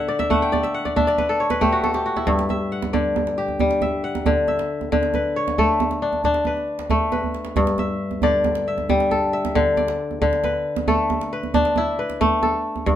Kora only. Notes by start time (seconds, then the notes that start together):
Already playing: D3 E5 F#5
0.08 D5
0.19 E5
0.30 A3 F#5
0.42 G5
0.52 D5
0.63 E5
0.74 F#5
0.85 D5
0.96 D4 E5
1.07 D5
1.18 B4
1.29 A4
1.40 C#5
1.50 B4
1.61 A3 G4
1.72 F#4
1.84 A4
1.94 G4
2.06 F#4
2.17 E4
2.27 G2
2.50 E5
2.72 F#5
2.93 D3 D5
3.38 G4
3.60 G3
3.82 E5
4.04 F#5
4.26 D3
4.48 E5
4.92 D3
5.15 B4
5.36 C#5
5.58 A3 A4
6.02 D4
6.25 D4
6.47 B4
6.90 A3
7.12 B4
7.57 G2
7.79 E5
8.23 D3 D5
8.68 E5
8.90 G3
9.11 A4
9.33 E5
9.55 D3
9.77 D5
10.22 D3
10.44 B4
10.88 A3 A4
11.33 B4
11.54 D4
11.77 E4
11.99 B4
12.21 A3
12.43 A4
12.86 G2